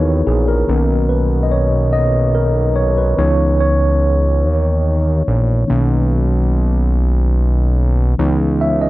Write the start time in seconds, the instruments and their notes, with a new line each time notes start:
Already playing: analog synth bass D#2, tine electric piano E3 B3 D#4 E4 F#4 G#4 A#4 B4 C#5
0.27 analog synth bass A#1, tine electric piano G#4
0.48 tine electric piano A#4
0.67 analog synth bass B1, tine electric piano D#3 A#3 C#4
1.09 tine electric piano B4
1.43 tine electric piano D#5
1.52 tine electric piano C#5
1.93 tine electric piano D#5
2.35 tine electric piano A#4
2.76 tine electric piano C#5
2.98 tine electric piano B4
3.17 analog synth bass C#2, tine electric piano E3 B3 D#4 C#5
3.60 tine electric piano C#5
4.44 analog synth bass D#2
5.28 analog synth bass A#1
5.67 analog synth bass B1, tine electric piano D#3 A#3 C#4
8.18 analog synth bass C#2, tine electric piano E3 B3 D#4
8.61 tine electric piano E5
8.82 tine electric piano D#5